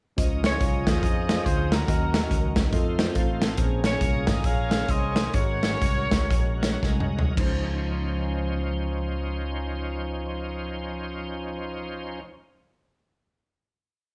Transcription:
0.17 C#2 C#3 F3 C#4 D#4 F4 C5 D#5, kick, closed hi-hat
0.44 F4 G#4 C#5, snare, closed hi-hat
0.51 C#4 E4 D#5 C6
0.57 F4, kick, closed hi-hat
0.61 C2
0.87 D#2 G#4 C5 D#5, kick, snare, closed hi-hat
1.03 F2, kick, closed hi-hat
1.29 C#4 F4 C5 F5, snare, closed hi-hat
1.46 D2 C5, kick, closed hi-hat
1.72 C#4 F#4 A#4, snare, closed hi-hat
1.87 D#2 D#3 F#3 C#4 D#4 F#4 A#4 D#5, kick, closed hi-hat
2.14 snare, closed hi-hat
2.22 C#4 F#4 A#4 D#5
2.31 C#2, kick, closed hi-hat
2.56 kick, snare, closed hi-hat
2.72 F2 A3 C4 D#4 F4 A4 C5 D#5, kick, closed hi-hat
2.98 C4 D#4 F4 F#4 C5, snare, closed hi-hat
3.05 A4
3.15 A1 A3 F4, kick, closed hi-hat
3.42 C4 A4, snare, closed hi-hat
3.58 A#1 A#2 A#3 C#4 G#4 A#4 C5, kick, closed hi-hat
3.84 F4 G#4 C#5, snare, closed hi-hat
3.92 A#3 C#4 G#4 C#5
4.01 C2, kick, closed hi-hat
4.27 G#1 D#5, kick, snare, closed hi-hat
4.44 A#1 G#4 C#5 F5, kick, closed hi-hat
4.70 A#3 C#4 G#4 C#5, snare, closed hi-hat
4.88 C2 G#4 C5 D#5, kick, closed hi-hat
5.16 snare, closed hi-hat
5.33 G#1 G#2 G#3 C#4 F#4 A4 A#4 C#5, kick, closed hi-hat
5.40 A#4
5.63 snare, closed hi-hat
5.73 G#3 C#4 F#4 A#4
5.82 C2, kick, closed hi-hat
6.11 C#2, kick, snare, closed hi-hat
6.30 A#1, kick, closed hi-hat
6.62 G#3 C#4 F#4 C#5 F#5 G#5, snare, closed hi-hat
6.83 C2 D#5, kick, snare
7.00 mid tom
7.19 floor tom
7.36 C#2 F3 C#4 D#4 C5, kick, crash
7.41 C5

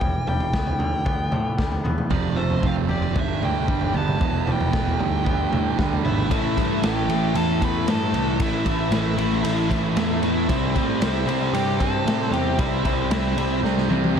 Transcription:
Already playing: G3 G4 G5
0.01 E1 E2, kick, floor tom
0.27 G3 G5, floor tom, mid tom
0.40 floor tom
0.53 C#2 B3, kick, snare
0.67 floor tom
0.79 D2 D3, floor tom
1.05 D2 B3, kick, floor tom
1.32 A2 D3, floor tom, mid tom
1.58 D2 G3, kick, snare
1.72 floor tom
1.84 E2 B3, floor tom, mid tom
1.98 mid tom
2.10 F1 F2 C3 F3 D5, kick, floor tom
2.36 F2 C3 F3 A3 C5, mid tom
2.50 floor tom
2.62 F1 F2 C3 F3 C4 F5, kick
2.76 floor tom
2.89 F1 F2 C3 F3 G4 D5, floor tom
3.14 G1 G2 D3 G3, kick, floor tom
3.20 E5
3.42 D2 G2 D3 E3 G3 G5, mid tom
3.67 G1 G2 D3 G3, kick
3.81 floor tom
3.94 G1 G2 D3 G3 B3 A5, floor tom
4.08 mid tom
4.20 E1 E2 B2 E3, kick, floor tom
4.46 E2 B2 E3 G3, floor tom, mid tom
4.52 G5
4.61 floor tom
4.72 E1 E2 B2 E3 B3, kick, snare
4.87 floor tom
4.99 D2 G2 D3 G3, floor tom
5.25 D2 G2 D3 G3 B3, kick, floor tom
5.51 G2 A2 D3 G3, floor tom, mid tom
5.77 D2 G2 D3 G3, kick, snare
5.92 floor tom
6.04 G#1 G2 D3 G3 B3 E4 E5, floor tom, mid tom
6.18 mid tom
6.30 A1 A2 E3 A3 E4 E5, kick, ride
6.57 G2 A2 E3 A3, kick, ride
6.82 A1 A2 E3 A3 G4 G5, snare, ride
7.09 A1 A2 E3 A3, ride
7.35 E2 A2 E3 A3 A4 A5, ride
7.61 E2 A2 E3 A3 B4 B5, kick, ride
7.86 G2 A2 E3 A3 A4 A5, snare, ride
8.13 C2 A2 E3 A3, ride
8.39 A1 A2 E3 A3 E4 E5, kick, ride
8.66 A1 A2 E3 A3, kick, ride
8.91 A1 A2 E3 A3 E4 E5, snare, ride
9.17 A1 A2 E3 A3, ride
9.32 snare
9.44 A1 A2 E3 A3, ride
9.70 A1 A2 E3 A3, kick, ride
9.96 E2 A2 E3 A3, snare, ride
10.22 A2 E3 A3 E4 E5, ride
10.48 C2 C3 G3 C4, kick, ride
10.75 A2 C3 G3 C4, kick, ride
10.84 D5
11.01 C2 C3 G3 C4 E4 E5, snare, ride
11.26 C2 C3 G3 C4, ride
11.42 snare
11.46 D5
11.53 G2 C3 G3 C4 G4 G5, ride
11.80 G2 C3 G3 C4 A4 A5, kick, ride
12.05 A2 C3 G3 C4, snare, ride
12.31 E2 C3 G3 C4 G4 G5, ride
12.58 C2 C3 G3 C4 E4 E5, kick, ride
12.84 C2 C3 G3 C4, kick, ride
13.10 C2 C3 G3 C4 E4 E5, snare, ride
13.37 C2 C3 G3 C4, ride
13.63 C2 C3 G3 C4, snare
13.78 snare
13.89 C2 C3 G3 C4, high tom
14.04 high tom
14.14 G1 C3 G3 C4

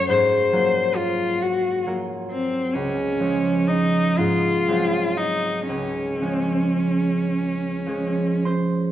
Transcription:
Already playing: F#2 F#3 A3 C#4
0.09 G#2 C5
0.53 F#3 A#3 F4
0.96 F4
1.42 F#4
1.86 F#3 A#3 F4
2.31 C4
2.74 C#2 C#4
3.20 F3 G#3 C#4
3.68 D#4
4.17 G#2 F4
4.68 F#3 G#3 C4
5.17 D#4
5.68 C#2 C#4
6.21 F3 G#3 C#4
7.87 F3 G#3 C#4
8.45 C5 C6

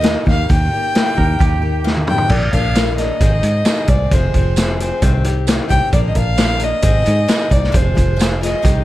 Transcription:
Already playing: D#2 D#5
0.01 D#3 A#3 D#4 G4, snare, closed hi-hat
0.25 D#2 A#3 D#4 G4 F5, kick, snare
0.49 D#2 D#3 A#3 D#4 G4 G5, kick, closed hi-hat
0.73 A#3 D#4 G4
0.95 D#3 A#3 D#4 G4, snare, closed hi-hat
1.17 D#2 A#3 D#4 G4 A#4, kick
1.39 D#2 D#3 A#3 D#4 G4, kick, closed hi-hat
1.62 A#3 D#4 G4
1.84 D#3 A#3 D#4 G4, snare
1.97 high tom
2.07 F2 A#3 D#4 G4 G5, mid tom
2.18 floor tom
2.29 A#1 A#2 F3 A#3 D4 A#4 D5, kick, crash
2.52 A#1 A#3 D4 A#4 F5, kick, closed hi-hat
2.75 F3 A#3 D4 A#4, snare, closed hi-hat, tambourine
2.97 A#3 D4 A#4 D#5, snare, closed hi-hat
3.20 G#1 G#2 D#3 G#3 C4 D#4 G#4, kick, closed hi-hat
3.43 G#2 G#3 C4 D#4 G#4, closed hi-hat
3.65 G#3 C4 D#4 G#4, snare, closed hi-hat, tambourine
3.87 C2 C4 D#4 G#4 D5, kick, closed hi-hat
3.92 G#3
4.11 F1 F2 C3 F3 G#3 C4 G#4 C5, kick, closed hi-hat
4.34 F1 F3 G#3 C4 G#4, kick, closed hi-hat
4.56 F3 G#3 C4 G#4, snare, closed hi-hat, tambourine
4.80 F3 G#3 C4 G#4 C5, closed hi-hat
5.02 C2 C3 D#3 C4 D#4 G4, kick, closed hi-hat
5.24 C4 D#4 G4, closed hi-hat
5.47 D#3 C4 D#4 G4, snare, closed hi-hat, tambourine
5.69 C2 C4 D#4 G4 G5, kick, closed hi-hat
5.92 A#1 A#2 F3 A#3 D4 A#4 D5, kick, closed hi-hat
6.08 D#5
6.15 A#1 A#3 D4 A#4 F5, kick, closed hi-hat
6.37 F3 A#3 D4 A#4, snare, closed hi-hat, tambourine
6.59 A#3 D4 A#4, closed hi-hat
6.63 D#5
6.82 G#1 G#2 D#3 G#3 C4 D#4 G#4, kick, closed hi-hat
7.04 G#2 G#3 C4 D#4 G#4, closed hi-hat
7.27 G#3 C4 D#4 G#4, snare, closed hi-hat, tambourine
7.49 C2 G#3 C4 D#4 G#4 D5, kick, closed hi-hat
7.64 snare
7.72 F1 F2 C3 F3 G#3 F4 G#4, kick, closed hi-hat
7.76 C5
7.95 F1 F3 G#3 F4 G#4, kick, closed hi-hat
8.16 F3 G#3 F4 G#4, closed hi-hat, tambourine
8.21 snare
8.41 F3 G#3 F4 G#4 D#5, snare, closed hi-hat
8.62 C2 C3 D#3 C4 D#4 G4, kick, closed hi-hat

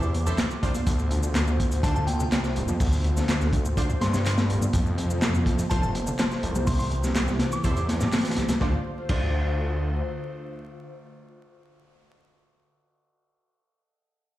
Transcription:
Already playing: E2 E3 A3 G4 C5 D6
0.02 C2, shaker
0.14 closed hi-hat, high conga
0.26 C2 E4 A4 C5, low conga, shaker
0.38 C2, snare, clap, closed hi-hat, shaker
0.51 shaker
0.63 C2 D4 F4 C5, kick, closed hi-hat
0.75 E2, closed hi-hat, high conga, low conga, shaker
0.87 D2 D3 A3 F4 C5, kick, closed hi-hat, shaker
0.99 shaker
1.11 D2, closed hi-hat
1.23 D3, shaker
1.35 D2, snare, clap, closed hi-hat, shaker
1.47 D2, high conga, shaker
1.60 kick, closed hi-hat
1.72 closed hi-hat, shaker
1.83 D3 D4 F4 C5 A5, kick, closed hi-hat, shaker
1.95 D2 A5, shaker
2.07 G5, closed hi-hat, high conga
2.19 C3 G5, shaker
2.32 C2 D3, snare, clap, closed hi-hat, shaker
2.44 snare, shaker
2.56 D1, closed hi-hat
2.68 F2 D3, high conga, shaker
2.80 D2, kick, open hi-hat, shaker
2.93 shaker
3.04 D2, closed hi-hat
3.17 D3, snare, shaker
3.28 D2, snare, clap, closed hi-hat, shaker
3.41 D2, snare, high conga, shaker
3.53 kick, closed hi-hat
3.65 shaker
3.77 D3 D4 F4 C5, kick, closed hi-hat, shaker
3.90 D2, shaker
4.00 G2 C6, snare, closed hi-hat, high conga
4.13 C3 C6, snare, low conga, shaker
4.26 D3, clap, closed hi-hat, shaker
4.38 snare, shaker
4.50 D1, closed hi-hat
4.61 D3, high conga, low conga, shaker
4.73 F2 C3 F4 C5, kick, closed hi-hat, shaker
4.86 shaker
4.98 F2, closed hi-hat
5.10 F3, shaker
5.22 F2, snare, clap, closed hi-hat, shaker
5.34 F2, high conga, shaker
5.46 kick, closed hi-hat
5.58 closed hi-hat, shaker
5.70 F1 F3 F4 A4 C5 A5, kick, closed hi-hat, shaker
5.82 F2 A5, shaker
5.95 closed hi-hat, high conga
6.07 D3, shaker
6.19 F3, snare, clap, closed hi-hat, shaker
6.31 snare, shaker
6.43 F1 C2, closed hi-hat
6.55 F3, high conga, shaker
6.67 C2 E3 G4 C6, kick, open hi-hat, shaker
6.79 C6, shaker
6.91 C2, closed hi-hat
7.04 C3, snare, low conga, shaker
7.15 C2, snare, clap, closed hi-hat, shaker
7.28 C2, snare, high conga, shaker
7.39 snare, closed hi-hat
7.52 D6, shaker
7.64 E2 C3 E4 A4 C5, kick, closed hi-hat, shaker
7.76 C2, closed hi-hat, shaker
7.88 snare, closed hi-hat, high conga
8.01 A2, snare, low conga, shaker
8.12 C3, snare, clap, closed hi-hat, shaker
8.18 snare, closed hi-hat
8.24 snare, closed hi-hat, shaker
8.30 snare, closed hi-hat
8.36 C2, snare, closed hi-hat
8.49 C3, snare, closed hi-hat, high conga, low conga, shaker
8.60 D2 D3 A3 D4 F4 C5, kick, snare
9.09 D2 D4 F4 C5, kick, crash

